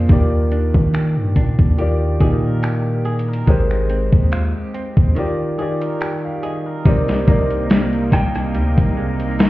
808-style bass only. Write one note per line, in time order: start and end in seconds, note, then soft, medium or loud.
0.09 0.72 D#2 loud
0.74 1.18 D#3 loud
1.17 1.35 G2 loud
1.36 1.58 A#2 loud
1.59 2.18 D#2 loud
2.21 3.43 A#2 loud
3.47 4.10 G#1 loud
4.13 4.53 D#2 medium
4.97 5.16 D#2 loud
6.86 7.26 C2 loud
7.28 8.09 C2 loud
8.12 8.56 C2 loud
8.55 8.76 D2 loud
8.78 9.50 C2 loud